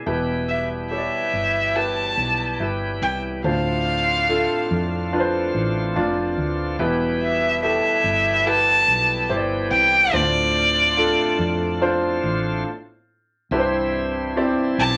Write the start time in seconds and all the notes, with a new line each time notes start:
0.06 E1 B2 E3 G3 B3 E4 G4 B4
0.49 E5
0.91 E4 G4 C#5 E5
0.98 D5
1.33 G1
1.76 E4 G4 B4 A5
2.17 B1
2.60 G1 E4 G4 B4
3.02 C2 G5
3.44 D2 A2 D3 A3 C4 D4 F4 C5 F5
4.29 D4 F4 A4
4.71 F2
5.13 D4 F4 B4
5.20 C5
5.54 A1
5.96 F1 D4 F4 D5
6.38 D2
6.79 E1 B2 E3 G3 B3 E4 G4 B4
7.22 E5
7.63 E4 G4 A4 E5
8.04 G1
8.46 E4 G4 B4 A5
8.88 B1
9.29 G1 E4 G4 C5
9.37 D5
9.71 C2 G5
10.13 D2 A2 D3 A3 C4 D4 F4 C5 D5
10.97 D4 F4 A4
11.39 F2
11.81 D4 F4 C5
12.23 A1
13.51 C2 G2 E3 G3 C4 E4 G4 B4
13.59 C5
14.37 C4 E4 G4 D5
14.78 B1 A5